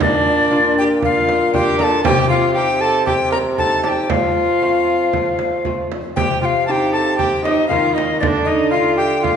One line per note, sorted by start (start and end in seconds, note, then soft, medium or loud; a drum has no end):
0.00 2.01 A#2 medium
0.00 0.78 D4 medium
0.00 0.76 D5 medium
0.00 frame drum medium
0.51 0.98 A#3 medium
0.51 0.99 D4 medium
0.51 0.99 F4 medium
0.78 0.88 G4 medium
0.78 0.84 G5 loud
1.02 1.54 F4 medium
1.02 1.54 F5 medium
1.02 frame drum medium
1.29 frame drum medium
1.53 2.01 A#3 medium
1.53 2.01 D4 medium
1.53 2.01 F4 medium
1.53 1.82 G4 medium
1.53 1.79 G5 medium
1.53 frame drum soft
1.79 2.05 A4 medium
1.79 1.84 A#5 medium
1.79 frame drum medium
1.83 2.04 A5 loud
2.04 4.06 C3 medium
2.04 2.29 G4 medium
2.04 2.29 G5 loud
2.04 frame drum medium
2.30 2.54 F4 medium
2.30 2.54 F5 loud
2.54 3.03 C4 medium
2.54 3.04 D#4 medium
2.54 2.81 G4 medium
2.54 2.83 G5 loud
2.81 3.06 A4 medium
2.81 3.05 A5 loud
3.06 3.14 G4 medium
3.06 3.31 G5 medium
3.06 frame drum medium
3.30 3.38 A#4 medium
3.30 3.38 A#5 medium
3.30 frame drum medium
3.56 4.06 C4 soft
3.56 4.06 D#4 medium
3.56 3.83 A4 medium
3.56 3.84 A5 medium
3.56 frame drum soft
3.83 3.91 G4 medium
3.83 3.90 A5 medium
3.83 frame drum medium
3.89 4.12 G5 medium
4.09 4.61 F3 medium
4.09 5.88 F3 medium
4.09 5.62 F4 medium
4.09 5.65 F5 medium
4.09 frame drum medium
4.61 5.09 A3 soft
4.61 5.10 C4 soft
4.61 5.10 F4 medium
5.13 5.64 A3 soft
5.13 frame drum soft
5.39 frame drum soft
5.65 6.13 A3 soft
5.65 6.13 C4 soft
5.65 6.13 F4 soft
5.65 frame drum soft
5.92 frame drum medium
6.16 7.72 C3 medium
6.16 7.67 C3 medium
6.16 6.41 G4 medium
6.16 6.40 G5 medium
6.16 frame drum medium
6.42 6.50 F4 medium
6.42 6.67 F5 medium
6.42 6.46 G5 medium
6.67 7.16 C4 medium
6.67 7.15 D#4 medium
6.67 6.95 G4 medium
6.67 6.72 A5 medium
6.71 6.92 G5 medium
6.92 7.18 A4 medium
6.92 7.17 A5 medium
7.17 7.44 G4 medium
7.17 7.43 G5 medium
7.17 frame drum medium
7.44 7.69 D#4 medium
7.44 7.68 D#5 medium
7.44 frame drum medium
7.68 8.17 D#3 medium
7.68 8.24 D#3 medium
7.68 8.17 C4 soft
7.68 8.18 D#4 medium
7.68 7.96 F4 medium
7.68 7.94 F5 medium
7.68 frame drum soft
7.95 8.21 D#4 medium
7.95 8.19 D#5 medium
7.95 frame drum medium
8.20 9.36 D3 medium
8.20 8.48 D4 medium
8.20 8.26 D5 medium
8.20 frame drum medium
8.45 8.73 D#4 medium
8.45 8.70 D#5 medium
8.71 9.20 A3 medium
8.71 8.99 F4 medium
8.71 9.21 F4 medium
8.71 8.96 F5 medium
8.97 9.22 G4 medium
8.97 9.25 G5 loud
9.23 9.36 F4 medium
9.23 9.36 F5 medium
9.23 frame drum medium